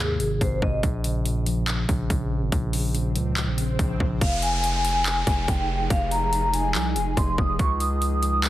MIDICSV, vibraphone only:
0, 0, Header, 1, 2, 480
1, 0, Start_track
1, 0, Key_signature, -4, "minor"
1, 0, Tempo, 422535
1, 947, Time_signature, 4, 2, 24, 8
1, 9647, End_track
2, 0, Start_track
2, 0, Title_t, "Vibraphone"
2, 0, Program_c, 0, 11
2, 0, Note_on_c, 0, 68, 76
2, 427, Note_off_c, 0, 68, 0
2, 472, Note_on_c, 0, 72, 76
2, 662, Note_off_c, 0, 72, 0
2, 705, Note_on_c, 0, 75, 77
2, 898, Note_off_c, 0, 75, 0
2, 4787, Note_on_c, 0, 77, 85
2, 4980, Note_off_c, 0, 77, 0
2, 5027, Note_on_c, 0, 80, 90
2, 5478, Note_off_c, 0, 80, 0
2, 5508, Note_on_c, 0, 80, 92
2, 6184, Note_off_c, 0, 80, 0
2, 6229, Note_on_c, 0, 79, 83
2, 6679, Note_off_c, 0, 79, 0
2, 6707, Note_on_c, 0, 77, 94
2, 6899, Note_off_c, 0, 77, 0
2, 6945, Note_on_c, 0, 82, 89
2, 7397, Note_off_c, 0, 82, 0
2, 7431, Note_on_c, 0, 80, 80
2, 8106, Note_off_c, 0, 80, 0
2, 8144, Note_on_c, 0, 84, 85
2, 8337, Note_off_c, 0, 84, 0
2, 8389, Note_on_c, 0, 87, 80
2, 8580, Note_off_c, 0, 87, 0
2, 8624, Note_on_c, 0, 85, 93
2, 8817, Note_off_c, 0, 85, 0
2, 8864, Note_on_c, 0, 87, 86
2, 9316, Note_off_c, 0, 87, 0
2, 9341, Note_on_c, 0, 87, 97
2, 9647, Note_off_c, 0, 87, 0
2, 9647, End_track
0, 0, End_of_file